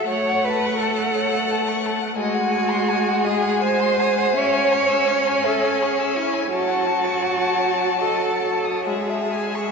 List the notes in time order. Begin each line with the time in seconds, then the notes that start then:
Already playing: E5
0.07 A3 C#5 F#5
0.12 C#5
0.29 F#5
0.44 B4
0.49 A5
0.66 C#6
0.79 A4 A5
0.99 F#5
1.15 C#5
1.33 F#5
1.51 A5
1.69 C#6
1.86 A5
2.02 F#5
2.18 G#3 F#4 D#5 G#5
2.34 F#5
2.51 G#5
2.70 C6
2.90 G#5
3.08 F#5
3.25 G#4 D#5
3.43 F#5
3.62 C5 G#5
3.80 C6
4.00 G#5
4.18 F#5
4.35 C#4 C#5 E5
4.53 G#5
4.72 C#6
4.90 E6
5.08 C#6
5.27 G#5
5.44 A4 E5
5.64 G#5
5.81 G#4 C#6
6.00 E6
6.17 E4 C#6
6.34 G#5
6.51 F#3 F#4 C#5 A5
6.68 F#5
6.87 A5
7.04 C#6
7.22 A5
7.40 F#5
7.60 C#5
7.79 F#5
8.01 A4 D#5
8.21 F#5
8.42 A5
8.65 D#6
8.86 G#3 G#4 C#5 E5
9.10 E5
9.33 G#5
9.55 C#6